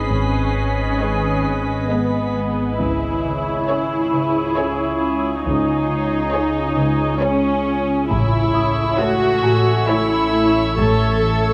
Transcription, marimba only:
0.11 G#2
0.56 G#2
1.01 G#3
1.46 G#2
1.91 G#3
2.36 G#3
2.81 C#3
3.25 C#3
3.69 C#4
4.13 C#3
4.57 C#4
5.01 C#4
5.46 C#3
5.89 C#3
6.33 C#4
6.77 C#3
7.21 C#4
7.66 C#4
8.11 A2
8.54 A2
8.99 A3
9.43 A2
9.88 A3
10.33 A3
10.79 A2
11.24 A2

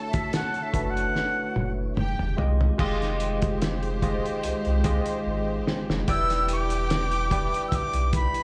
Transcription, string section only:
Already playing: A4 A5
1.97 G4 G5
2.79 G#3 G4 C5
6.08 G4 G5

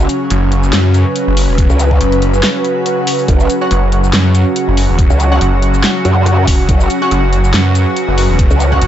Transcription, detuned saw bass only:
0.31 F#1
0.73 F#2
1.27 F#1
1.49 E1
2.01 F#1
3.71 F#1
4.13 F#2
4.68 F#1
4.89 E1
5.41 F#1
6.48 E1
7.11 F#1
7.54 F#2
8.08 F#1
8.29 E1
8.82 F#1

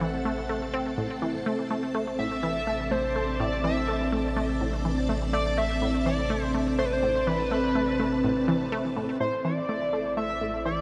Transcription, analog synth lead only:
Already playing: F#5
2.19 E5
2.91 C5
3.40 D5
3.64 E5
5.33 D5
5.58 E5
6.06 D5
6.78 C5
6.85 B4
6.93 C5
7.27 B4
9.20 C5
9.45 D5
10.17 E5
10.65 D5

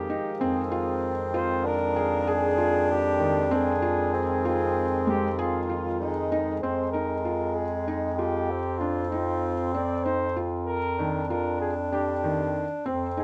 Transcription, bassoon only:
Already playing: D4
0.39 C4
1.64 D4
4.14 C4
6.00 G#3
6.63 G#3
8.50 C4
10.98 D4
12.86 C4

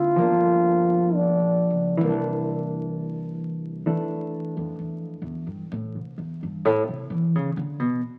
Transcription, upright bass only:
Already playing: G#1
0.18 G1
1.40 A#1
1.70 C#2
2.01 C2
4.57 F2
4.79 E2
5.01 F2
5.22 E2
5.47 G2
5.72 A2
5.95 C2
6.18 E2
6.43 G2
6.65 A2
6.88 C3
7.10 E3
7.35 C#3
7.57 D3
7.79 B2

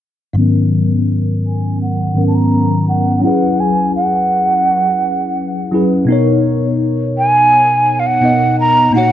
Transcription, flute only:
1.46 G#5
1.82 F#5
2.28 A5
2.35 A#5
2.89 F#5
3.24 F#5
3.60 G#5
3.96 F#5
7.18 G#5
7.99 F5
8.06 F#5
8.60 A#5
8.95 F#5

